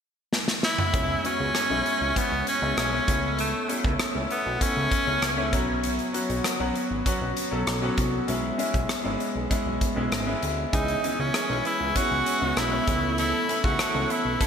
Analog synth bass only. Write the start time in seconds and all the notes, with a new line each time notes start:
0.94 C#2
1.40 C#2
1.70 B1
2.01 C#2
2.32 C#2
2.62 C#2
2.77 B1
3.08 C#2
3.84 C#2
4.15 C#2
4.46 B1
4.77 C#2
5.07 C#2
5.22 C#2
5.53 B1
6.29 B1
6.60 B1
6.91 G#1
7.21 B1
7.52 B1
7.67 B1
7.98 C2
8.28 B1
8.74 B1
9.05 G#1
9.35 B1
9.66 B1
9.97 B1
10.12 G#1
10.43 D2
10.73 C#2
11.19 C#2
11.50 B1
11.81 C#2
12.11 C#2
12.42 C#2
12.57 B1
12.88 C#2
13.64 C#2
13.95 C#2
14.25 B1